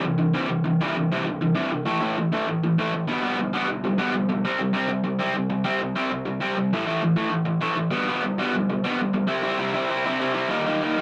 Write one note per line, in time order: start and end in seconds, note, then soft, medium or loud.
0.04 0.17 C3 medium
0.04 0.18 E3 medium
0.18 0.33 C3 medium
0.18 0.33 E3 medium
0.34 0.47 C3 medium
0.34 0.47 E3 medium
0.34 0.49 G3 loud
0.48 0.63 C3 medium
0.48 0.63 E3 medium
0.64 0.78 C3 medium
0.64 0.79 E3 medium
0.81 0.94 C3 medium
0.81 0.95 E3 medium
0.81 0.95 G3 medium
0.95 1.09 C3 medium
0.95 1.09 E3 medium
1.12 1.24 C3 medium
1.12 1.25 E3 loud
1.12 1.26 G3 medium
1.25 1.39 C3 medium
1.25 1.40 E3 medium
1.41 1.54 C3 medium
1.41 1.54 E3 medium
1.55 1.70 C3 medium
1.55 1.70 E3 medium
1.55 1.70 G3 medium
1.72 1.85 C3 medium
1.72 1.85 E3 medium
1.85 2.00 A2 medium
1.85 2.00 E3 medium
1.85 2.00 A3 loud
2.01 2.16 A2 medium
2.01 2.16 E3 medium
2.01 2.16 A3 medium
2.18 2.31 A2 medium
2.18 2.31 E3 medium
2.32 2.46 A2 medium
2.32 2.47 E3 medium
2.32 2.47 A3 medium
2.48 2.61 A2 medium
2.48 2.61 E3 medium
2.63 2.77 A2 medium
2.63 2.77 E3 medium
2.78 2.92 A2 medium
2.78 2.93 E3 medium
2.78 2.93 A3 medium
2.94 3.07 A2 medium
2.94 3.07 E3 medium
3.08 3.22 B2 medium
3.08 3.22 G3 loud
3.08 3.22 B3 loud
3.23 3.38 B2 medium
3.23 3.38 G3 medium
3.23 3.38 B3 medium
3.39 3.52 B2 medium
3.39 3.52 G3 medium
3.53 3.67 B2 medium
3.53 3.67 G3 medium
3.53 3.68 B3 medium
3.68 3.82 B2 medium
3.68 3.82 G3 medium
3.84 3.97 B2 medium
3.84 3.97 G3 medium
3.98 4.12 B2 medium
3.98 4.13 G3 loud
3.98 4.13 B3 medium
4.13 4.28 B2 medium
4.13 4.28 G3 medium
4.29 4.43 B2 medium
4.29 4.43 G3 medium
4.45 4.58 C3 medium
4.45 4.59 G3 medium
4.45 4.59 C4 medium
4.59 4.72 C3 medium
4.59 4.73 G3 medium
4.73 4.87 C3 medium
4.73 4.87 G3 medium
4.73 4.89 C4 medium
4.88 5.03 C3 medium
4.88 5.03 G3 medium
5.04 5.18 C3 medium
5.04 5.18 G3 medium
5.19 5.33 C3 medium
5.19 5.33 G3 medium
5.19 5.34 C4 medium
5.34 5.49 C3 medium
5.34 5.49 G3 medium
5.50 5.63 C3 medium
5.50 5.63 G3 medium
5.64 5.79 C3 medium
5.64 5.79 G3 medium
5.64 5.80 C4 medium
5.80 5.94 C3 medium
5.80 5.95 G3 medium
5.96 6.10 C3 medium
5.96 6.09 G3 medium
5.96 6.11 C4 medium
6.11 6.24 C3 medium
6.11 6.25 G3 medium
6.26 6.39 C3 medium
6.26 6.40 G3 medium
6.40 6.55 C3 medium
6.40 6.56 G3 medium
6.40 6.56 C4 medium
6.56 6.71 C3 medium
6.56 6.71 G3 medium
6.73 6.85 A2 medium
6.73 6.85 E3 medium
6.73 6.86 A3 medium
6.86 7.00 A2 medium
6.86 7.01 E3 medium
6.86 7.02 A3 medium
7.02 7.15 A2 medium
7.02 7.15 E3 medium
7.16 7.29 A2 medium
7.16 7.30 E3 medium
7.16 7.32 A3 medium
7.30 7.44 A2 medium
7.30 7.44 E3 medium
7.45 7.60 A2 medium
7.45 7.60 E3 loud
7.61 7.74 A2 medium
7.61 7.75 E3 loud
7.61 7.77 A3 loud
7.75 7.91 A2 medium
7.75 7.91 E3 medium
7.91 8.07 B2 medium
7.91 8.07 G3 medium
7.91 8.07 B3 loud
8.08 8.21 B2 medium
8.08 8.21 G3 loud
8.08 8.23 B3 medium
8.22 8.37 B2 medium
8.22 8.37 G3 medium
8.38 8.53 B2 medium
8.38 8.54 G3 loud
8.38 8.54 B3 medium
8.55 8.69 B2 medium
8.55 8.69 G3 medium
8.70 8.83 B2 medium
8.70 8.83 G3 medium
8.84 8.99 B2 medium
8.84 8.99 G3 medium
8.84 8.99 B3 medium
9.00 9.13 B2 medium
9.00 9.13 G3 medium
9.14 9.27 B2 medium
9.14 9.27 G3 medium
9.27 9.42 C3 medium
9.27 9.43 G3 medium
9.27 9.42 C4 loud
9.27 9.41 E4 loud
9.42 9.57 C3 medium
9.42 9.59 G3 medium
9.42 9.58 C4 medium
9.42 9.59 E4 loud
9.58 9.74 C3 loud
9.58 9.74 G3 loud
9.58 9.74 C4 medium
9.58 9.72 E4 loud
9.73 9.88 C3 medium
9.73 9.89 G3 medium
9.73 9.89 C4 medium
9.73 9.90 E4 loud
9.90 10.05 C3 medium
9.90 10.05 G3 medium
9.90 10.05 C4 loud
9.90 10.05 E4 loud
10.06 10.19 C3 medium
10.06 10.20 G3 medium
10.06 10.19 C4 loud
10.06 10.20 E4 loud
10.20 10.35 C3 medium
10.20 10.35 G3 medium
10.20 10.34 C4 medium
10.20 10.33 E4 medium
10.34 10.49 C3 medium
10.34 10.48 G3 medium
10.34 10.50 C4 medium
10.34 10.50 E4 loud
10.49 10.67 D#3 loud
10.49 10.66 G3 loud
10.49 10.66 A#3 loud
10.49 10.65 D#4 loud
10.66 10.81 D#3 medium
10.66 10.82 G3 medium
10.66 10.82 A#3 medium
10.66 10.83 D#4 medium
10.82 10.98 D#3 medium
10.82 10.97 G3 loud
10.82 10.97 A#3 medium
10.82 10.97 D#4 loud
10.98 11.02 G3 loud
10.98 11.02 A#3 loud
10.98 11.02 D#4 loud